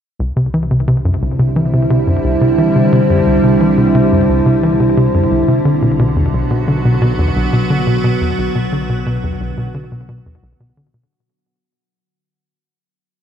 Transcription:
0.20 0.32 C2 medium
0.20 11.07 D3 medium
0.20 5.61 G3 medium
0.20 5.61 C4 medium
0.20 5.61 E4 medium
0.37 0.49 C3 medium
0.54 0.66 E3 medium
0.71 0.83 C3 medium
0.88 1.00 C3 medium
1.05 1.17 F#2 medium
1.22 1.35 C2 medium
1.39 1.52 C3 medium
1.56 1.69 E3 medium
1.73 1.86 C3 medium
1.90 2.03 C3 medium
2.07 2.20 F#2 medium
2.24 2.37 C2 medium
2.41 2.54 C3 medium
2.58 2.71 E3 medium
2.75 2.88 C3 medium
2.92 5.62 C2 medium
2.92 3.05 C3 loud
3.10 3.22 F#2 medium
3.27 3.39 C2 medium
3.44 3.56 C3 medium
3.61 3.73 E3 medium
3.78 3.90 C3 medium
3.95 4.07 C3 loud
4.12 4.24 F#2 medium
4.29 4.41 C2 medium
4.46 4.58 C3 medium
4.63 4.76 E3 medium
4.80 4.93 C3 medium
4.97 5.10 C3 medium
5.14 5.27 F#2 medium
5.31 5.44 C2 medium
5.48 5.61 C3 medium
5.65 8.35 B1 medium
5.65 5.78 D3 medium
5.65 11.07 F#3 medium
5.65 11.07 B3 medium
5.65 11.07 F#4 medium
5.82 5.95 B2 medium
5.99 6.12 B2 medium
6.16 6.29 E2 medium
6.33 6.46 B1 medium
6.51 6.63 B2 medium
6.68 6.80 D3 medium
6.85 6.97 B2 medium
7.02 7.14 B2 loud
7.19 7.31 E2 medium
7.36 7.48 B1 medium
7.53 7.65 B2 medium
7.70 7.82 D3 medium
7.87 7.99 B2 medium
8.04 8.16 B2 loud
8.21 8.34 E2 medium
8.38 8.51 B1 medium
8.55 8.68 B2 medium
8.72 8.85 D3 medium
8.89 9.02 B2 medium
9.06 9.19 B2 loud
9.23 9.36 E2 medium
9.40 9.53 B1 medium
9.57 9.70 B2 medium
9.74 9.87 D3 medium
9.92 10.04 B2 medium
10.09 10.21 B2 loud
10.26 10.38 E2 medium
10.43 10.55 B1 medium
10.60 10.72 B2 medium
10.77 10.89 D3 medium
10.94 11.06 B2 medium

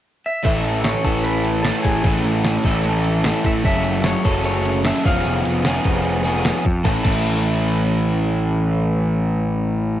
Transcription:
0.26 0.44 E5 medium
0.43 0.94 A1 medium
0.43 1.06 A2 medium
0.43 1.06 E3 medium
0.43 1.05 A3 medium
0.43 1.04 C#4 medium
0.43 1.04 A4 medium
0.43 0.84 E5 medium
0.43 kick medium
0.43 closed hi-hat medium
0.65 closed hi-hat medium
0.84 1.26 C#5 medium
0.84 snare medium
0.84 closed hi-hat medium
0.94 snare soft
1.04 1.70 A1 medium
1.04 1.64 A2 medium
1.04 1.65 E3 medium
1.04 1.66 A3 medium
1.04 1.66 C#4 medium
1.04 1.67 A4 medium
1.04 kick medium
1.04 closed hi-hat medium
1.23 1.61 B4 medium
1.23 closed hi-hat medium
1.45 closed hi-hat medium
1.63 2.03 A2 medium
1.63 2.04 E3 medium
1.63 2.05 A3 medium
1.63 1.82 A4 medium
1.63 snare loud
1.63 closed hi-hat medium
1.67 2.05 C#4 medium
1.67 2.06 A4 medium
1.83 2.01 A1 medium
1.83 2.21 G#4 medium
1.83 kick medium
1.83 closed hi-hat medium
2.04 2.21 A1 medium
2.04 2.63 A2 medium
2.04 2.66 E3 medium
2.04 2.66 A3 medium
2.04 2.65 C#4 medium
2.04 2.64 A4 medium
2.04 kick medium
2.04 closed hi-hat medium
2.24 2.57 A1 medium
2.24 closed hi-hat medium
2.44 snare medium
2.44 closed hi-hat medium
2.64 3.30 A1 medium
2.64 3.23 A2 medium
2.64 3.23 E3 medium
2.64 3.24 A3 medium
2.64 3.25 C#4 medium
2.64 3.24 A4 medium
2.64 kick medium
2.64 closed hi-hat soft
2.84 closed hi-hat medium
3.04 closed hi-hat soft
3.24 3.63 A2 medium
3.24 3.64 E3 medium
3.24 3.64 A3 medium
3.24 3.65 C#4 medium
3.24 3.64 A4 medium
3.24 snare loud
3.24 closed hi-hat medium
3.45 3.61 A2 medium
3.45 3.51 E5 medium
3.45 kick medium
3.45 closed hi-hat medium
3.63 4.14 F#1 medium
3.63 4.23 F#2 medium
3.63 4.24 C#3 medium
3.63 4.24 F#3 medium
3.63 4.24 A3 medium
3.63 4.25 C#4 medium
3.63 4.24 A4 medium
3.63 4.02 E5 medium
3.63 kick medium
3.63 closed hi-hat medium
3.85 closed hi-hat medium
4.04 4.42 C#5 medium
4.04 snare medium
4.04 closed hi-hat medium
4.25 4.90 F#1 medium
4.25 4.84 F#2 medium
4.25 4.84 C#3 medium
4.25 4.84 F#3 medium
4.25 4.84 A3 medium
4.25 4.86 C#4 medium
4.25 4.84 A4 medium
4.25 kick medium
4.25 closed hi-hat medium
4.44 4.85 C#5 medium
4.44 closed hi-hat medium
4.65 closed hi-hat medium
4.84 5.04 F#2 medium
4.84 5.04 C#3 medium
4.84 5.04 F#3 medium
4.84 5.04 A3 medium
4.84 5.05 C#4 medium
4.84 5.05 A4 medium
4.84 5.06 E5 medium
4.84 snare loud
4.84 closed hi-hat medium
5.05 5.22 F1 medium
5.05 5.63 F3 medium
5.05 5.64 B3 medium
5.05 5.64 C#4 medium
5.05 5.64 G#4 medium
5.05 5.43 F5 medium
5.05 kick medium
5.05 closed hi-hat medium
5.25 5.42 F1 medium
5.25 closed hi-hat medium
5.45 5.78 F1 medium
5.45 closed hi-hat medium
5.65 6.23 F3 medium
5.65 6.24 B3 medium
5.65 6.24 C#4 medium
5.65 6.23 G#4 medium
5.65 snare medium
5.65 closed hi-hat medium
5.84 6.51 F1 medium
5.84 kick medium
5.84 closed hi-hat soft
6.05 closed hi-hat medium
6.24 6.65 F3 medium
6.24 6.64 B3 medium
6.24 6.64 C#4 medium
6.24 6.63 G#4 medium
6.24 closed hi-hat medium
6.45 snare loud
6.45 closed hi-hat medium
6.65 6.81 F2 medium
6.65 kick medium
6.65 closed hi-hat soft
6.84 6.96 A1 medium
6.84 7.04 A2 medium
6.84 7.05 E3 medium
6.84 7.06 A3 medium
6.84 7.07 C#4 medium
6.84 7.08 E4 medium
6.84 6.96 A5 medium
6.84 kick medium
6.84 snare medium
7.03 10.00 A1 medium
7.03 10.00 A2 medium
7.03 10.00 E3 medium
7.03 10.00 A3 medium
7.03 10.00 A5 medium
7.03 kick medium
7.03 crash medium
7.07 10.00 C#4 medium
7.07 10.00 E4 loud

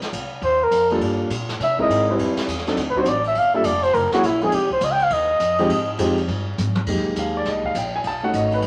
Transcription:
0.02 muted upright bass stroke soft
0.02 snare soft
0.13 0.41 C2 medium
0.13 kick soft
0.13 hi-hat pedal medium
0.13 ride medium
0.42 0.71 D#2 medium
0.42 0.65 C5 loud
0.42 kick soft
0.42 ride medium
0.63 0.92 A#4 medium
0.71 1.00 F2 medium
0.71 kick soft
0.71 hi-hat pedal medium
0.71 ride medium
0.90 1.29 G3 medium
0.90 1.29 A#3 medium
0.90 1.29 D4 medium
0.90 1.29 F4 medium
0.90 1.30 A4 medium
0.90 ride soft
1.01 1.30 G2 medium
1.01 kick soft
1.01 ride medium
1.30 1.59 A#2 medium
1.30 kick soft
1.30 hi-hat pedal medium
1.30 ride medium
1.49 snare medium
1.60 1.88 C3 medium
1.60 1.79 E5 loud
1.60 kick soft
1.60 snare soft
1.60 ride medium
1.78 2.06 G#3 medium
1.78 2.06 C4 medium
1.78 2.06 D#4 medium
1.78 2.07 E4 medium
1.78 2.07 A#4 medium
1.78 2.08 D#5 loud
1.78 kick medium
1.89 2.18 G#2 medium
1.89 kick soft
1.89 hi-hat pedal soft
1.89 ride medium
2.10 2.47 G3 medium
2.10 2.47 C4 medium
2.10 2.47 E4 medium
2.10 2.47 B4 medium
2.10 2.47 C5 medium
2.19 2.36 F2 medium
2.19 kick soft
2.19 ride medium
2.37 muted upright bass stroke soft
2.37 snare medium
2.37 ride medium
2.48 2.76 E2 medium
2.48 kick soft
2.48 hi-hat pedal medium
2.48 ride medium
2.57 snare soft
2.67 2.77 F#3 medium
2.67 2.77 C4 medium
2.67 2.77 D4 medium
2.67 2.77 D#4 medium
2.67 2.77 A4 medium
2.67 snare soft
2.77 2.94 D2 medium
2.77 kick soft
2.77 snare soft
2.77 ride medium
2.90 3.01 B4 medium
2.95 3.06 F#3 medium
2.95 3.06 C4 medium
2.95 3.06 D4 medium
2.95 3.06 D#4 medium
2.95 3.07 F#4 medium
2.95 muted upright bass stroke soft
2.95 kick medium
3.00 3.10 C5 loud
3.05 3.34 A1 medium
3.05 3.26 D5 medium
3.05 hi-hat pedal medium
3.05 ride medium
3.24 3.40 E5 loud
3.24 ride soft
3.35 3.64 G1 medium
3.35 3.55 F5 loud
3.35 kick soft
3.35 ride medium
3.54 3.64 G3 medium
3.54 3.64 A#3 medium
3.54 3.64 D4 medium
3.54 3.65 F4 medium
3.54 3.65 A4 medium
3.54 3.67 E5 loud
3.64 3.93 F1 loud
3.64 3.85 D5 loud
3.64 kick soft
3.64 hi-hat pedal medium
3.64 ride medium
3.83 3.95 C5 loud
3.83 ride medium
3.94 4.11 F#1 loud
3.94 4.13 A#4 medium
3.94 kick soft
3.94 ride medium
4.12 4.23 F#3 medium
4.12 4.23 A#3 medium
4.12 4.23 C#4 medium
4.12 4.23 E4 medium
4.12 4.27 F#4 loud
4.12 4.24 G#4 medium
4.12 muted upright bass stroke soft
4.12 snare medium
4.23 4.51 A#1 medium
4.23 4.45 E4 medium
4.23 kick soft
4.23 hi-hat pedal soft
4.23 ride medium
4.41 4.52 F3 medium
4.41 4.52 G#3 medium
4.41 4.53 C4 medium
4.41 4.52 D#4 medium
4.41 4.56 G#4 loud
4.41 4.53 G#4 medium
4.41 ride soft
4.52 4.80 C2 medium
4.52 4.72 G4 medium
4.52 kick soft
4.52 ride medium
4.70 4.86 C5 medium
4.70 kick medium
4.81 5.10 C#2 loud
4.81 4.93 D#5 medium
4.81 hi-hat pedal medium
4.81 ride medium
4.92 5.05 G5 loud
4.99 ride medium
5.03 5.14 F5 loud
5.10 5.39 D#2 loud
5.10 6.00 D#5 loud
5.10 kick soft
5.10 ride medium
5.40 5.69 F2 medium
5.40 kick soft
5.40 hi-hat pedal medium
5.40 ride medium
5.58 5.69 F3 medium
5.58 5.69 G#3 medium
5.58 5.69 C4 medium
5.58 5.69 D#4 medium
5.58 5.70 G4 loud
5.58 ride soft
5.69 5.98 G#2 medium
5.69 kick soft
5.69 ride medium
5.98 6.27 F2 medium
5.98 6.16 F3 medium
5.98 6.16 G#3 medium
5.98 6.16 C4 medium
5.98 6.16 D#4 medium
5.98 6.16 G4 medium
5.98 kick soft
5.98 hi-hat pedal medium
5.98 ride medium
6.18 ride medium
6.28 6.57 G2 loud
6.28 kick soft
6.28 ride medium
6.58 6.86 G#2 medium
6.58 hi-hat pedal medium
6.58 mid tom soft
6.75 mid tom medium
6.86 6.97 F2 medium
6.86 7.69 G#3 medium
6.86 7.69 A#3 medium
6.86 7.69 D#4 medium
6.86 7.70 G4 medium
6.86 kick medium
6.86 crash medium
6.97 7.06 D#2 soft
7.06 7.15 C2 medium
7.16 7.45 D#2 medium
7.16 7.36 F5 medium
7.16 kick soft
7.16 hi-hat pedal medium
7.16 ride medium
7.37 7.47 D5 medium
7.45 7.74 C2 medium
7.45 7.65 D#5 medium
7.45 kick soft
7.45 snare soft
7.45 ride medium
7.64 7.76 F5 medium
7.64 kick medium
7.75 8.03 A#1 medium
7.75 7.94 G5 medium
7.75 hi-hat pedal medium
7.75 ride medium
7.96 8.05 G#5 loud
8.04 8.33 B1 medium
8.04 8.24 A5 loud
8.04 kick soft
8.04 ride medium
8.23 8.61 A3 medium
8.23 8.61 C#4 medium
8.23 8.61 D#4 medium
8.23 8.61 F#4 medium
8.23 8.34 F#5 medium
8.33 8.62 G#1 medium
8.33 8.52 D#5 medium
8.33 kick soft
8.33 hi-hat pedal medium
8.33 ride medium
8.51 8.64 B4 medium
8.51 ride soft
8.62 8.67 A1 medium
8.62 ride medium

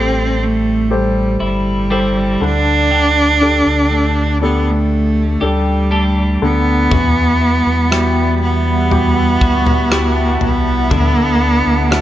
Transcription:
0.00 1.37 A1 medium
0.00 2.51 A2 medium
0.00 1.90 G3 medium
0.00 2.37 A3 medium
0.00 0.44 C4 medium
0.00 1.90 C4 soft
0.00 1.39 E4 medium
0.00 0.88 G4 soft
0.00 0.88 A4 soft
0.00 0.88 C5 soft
0.43 0.95 A3 medium
0.91 1.42 G3 medium
0.91 1.88 G4 soft
0.91 1.88 A4 soft
0.91 1.88 C5 soft
1.40 2.37 G1 medium
1.40 2.45 G3 medium
1.40 1.91 E4 medium
1.90 3.91 G3 medium
1.90 2.51 C4 medium
1.90 2.52 E4 medium
1.90 2.40 G4 soft
1.90 2.40 A4 soft
1.90 2.40 C5 soft
2.41 3.62 D2 medium
2.41 2.89 D3 medium
2.41 6.37 D3 medium
2.41 4.42 D4 loud
2.91 6.91 D3 medium
2.91 5.41 G4 medium
3.41 5.90 D4 medium
3.41 4.38 D4 soft
3.41 4.38 G4 soft
3.41 4.39 A4 soft
3.67 5.37 D2 medium
3.91 5.90 A3 medium
4.42 4.71 B3 medium
4.42 5.38 D4 soft
4.42 5.39 G4 soft
4.42 5.39 A4 soft
4.69 5.45 A3 medium
5.41 6.38 D2 medium
5.41 6.42 G3 medium
5.41 6.38 D4 soft
5.41 5.92 G4 medium
5.41 6.38 G4 soft
5.41 6.39 A4 medium
5.91 7.01 A3 medium
5.91 7.01 D4 medium
5.91 6.91 G4 medium
6.42 6.88 D2 medium
6.42 6.90 D3 medium
6.42 8.38 B3 loud
6.91 10.91 E2 medium
6.91 7.62 E2 loud
6.91 10.88 E3 medium
6.91 10.88 G3 medium
6.91 9.41 F#4 medium
6.91 10.88 E5 medium
6.91 12.01 F#5 medium
6.91 8.90 B5 medium
6.91 kick loud
6.91 floor tom loud
7.41 9.91 E4 medium
7.66 9.37 E2 medium
7.91 9.90 G3 medium
7.91 8.88 E4 soft
7.91 8.88 F#4 soft
7.91 8.89 G4 soft
7.91 cross-stick loud
8.44 10.39 B3 medium
8.91 9.88 E4 soft
8.91 9.88 F#4 soft
8.91 9.88 G4 soft
8.91 10.89 A5 medium
8.91 floor tom medium
9.41 10.37 D2 medium
9.41 9.92 F#4 medium
9.41 kick medium
9.67 floor tom medium
9.91 11.01 G3 medium
9.91 10.88 E4 soft
9.91 10.91 E4 medium
9.91 10.88 F#4 soft
9.91 10.91 F#4 medium
9.91 10.88 G4 soft
9.91 cross-stick medium
10.41 10.93 C2 medium
10.41 12.01 B3 loud
10.41 floor tom medium
10.90 11.62 D2 loud
10.90 12.01 D3 medium
10.90 12.01 E4 medium
10.90 12.01 A4 medium
10.90 12.01 E5 medium
10.90 12.01 D6 medium
10.90 kick loud
10.90 floor tom loud
11.41 12.01 D4 medium
11.67 12.01 D2 medium
11.90 12.01 A3 medium
11.90 12.01 D4 soft
11.90 12.01 E4 soft
11.90 12.01 F#4 soft
11.90 cross-stick medium

